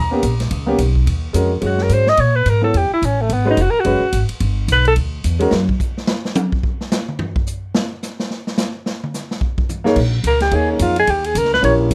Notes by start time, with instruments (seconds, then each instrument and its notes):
Already playing: upright bass D#2, upright piano A#5
0.11 upright piano A#3 B3 C#4 G4
0.23 upright bass A#1, kick, hi-hat pedal, ride
0.40 snare, ride
0.51 upright bass C#2, kick, ride
0.66 upright piano A#3 B3 C#4 G4
0.78 upright bass B1, kick, hi-hat pedal, ride
0.95 kick
1.06 upright bass D#2, kick, ride
1.33 upright bass F2, upright piano G#3 C#4 F#4 A#4, kick, hi-hat pedal, ride
1.61 upright bass F#2, upright piano G#3 C#4 F#4 C#5, kick, ride
1.66 alto saxophone F#4
1.78 snare
1.82 alto saxophone A#4
1.89 upright bass G#2, alto saxophone C5, kick, hi-hat pedal, ride
2.07 alto saxophone D#5, snare
2.17 upright bass A#2, alto saxophone C#5, kick, ride
2.36 alto saxophone B4
2.46 upright bass G#2, alto saxophone A#4, kick, hi-hat pedal, ride
2.61 upright piano B3 E4 A4 C#5, alto saxophone A4
2.74 upright bass E2, alto saxophone G4, kick, ride
2.90 alto saxophone E4, muted upright bass stroke
3.02 upright bass A1, alto saxophone C#4, kick, hi-hat pedal, ride
3.22 alto saxophone A3
3.29 upright bass G#1, alto saxophone B3, kick, ride
3.45 upright piano G#3 C#4 F#4 B4
3.51 alto saxophone D#4
3.57 upright bass F1, kick, hi-hat pedal, ride
3.62 alto saxophone F#4
3.70 alto saxophone A#4, muted upright bass stroke
3.80 upright piano G#3, alto saxophone F#4
3.85 upright bass F#1, upright piano C#4 F#4 B4, kick, ride
4.01 muted upright bass stroke
4.12 upright bass G#1, kick, hi-hat pedal, ride
4.29 muted upright bass stroke, ride
4.40 upright bass G1, kick, ride
4.68 upright bass B1, kick, hi-hat pedal, ride
4.72 alto saxophone B4
4.85 alto saxophone A4, ride
4.96 upright bass D2, kick, ride
5.24 upright bass E2, kick, hi-hat pedal, ride
5.39 upright piano G#3 C#4 F#4 A#4, ride
5.51 upright bass F#2, snare
5.69 kick
5.80 kick, hi-hat pedal
5.97 snare
6.07 snare
6.25 snare
6.35 hi-hat pedal, high tom
6.52 kick
6.63 kick
6.81 snare
6.92 snare, hi-hat pedal
7.08 mid tom
7.19 floor tom
7.36 kick
7.46 hi-hat pedal
7.75 snare
8.03 snare, hi-hat pedal
8.20 snare
8.30 snare
8.47 snare
8.57 snare, hi-hat pedal
8.86 snare
9.04 mid tom
9.14 snare, hi-hat pedal
9.31 snare
9.41 kick
9.58 kick
9.69 floor tom, hi-hat pedal
9.84 upright piano A#3 D#4 G#4 C#5, snare
9.96 upright bass A#1, kick, crash
10.24 upright bass C#2, alto saxophone A#4, kick, hi-hat pedal, ride
10.40 alto saxophone G4, snare, ride
10.51 upright bass D#2, upright piano A#3 D#4 G#4 C#5, alto saxophone G#4, kick, ride
10.72 alto saxophone C#4
10.79 upright bass F2, alto saxophone F4, kick, hi-hat pedal, ride
10.96 alto saxophone G#4, ride
11.07 upright bass D#2, alto saxophone G4, kick, ride
11.24 alto saxophone G#4, ride
11.35 upright bass C#2, alto saxophone A#4, kick, hi-hat pedal, ride
11.45 snare
11.54 alto saxophone B4, snare
11.61 upright bass A#1, upright piano C#4 E4 G4 A#4, alto saxophone C#5, kick, ride
11.91 upright bass G1, kick, hi-hat pedal, ride